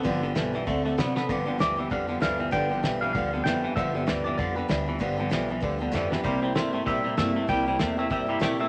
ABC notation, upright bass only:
X:1
M:4/4
L:1/8
Q:"Swing" 1/4=194
K:G
V:1 name="Upright bass" clef=bass
G,,,2 B,,,2 D,,2 C,2 | G,,,2 D,,2 =F,,2 D,,2 | G,,,2 B,,,2 D,,2 =F,,2 | G,,,2 D,,2 =F,,2 D,,2 |
G,,,2 B,,,2 D,,2 =F,,2 | C,,2 G,,2 _B,,2 G,,2 | C,,2 E,,2 G,,2 _B,,2 |]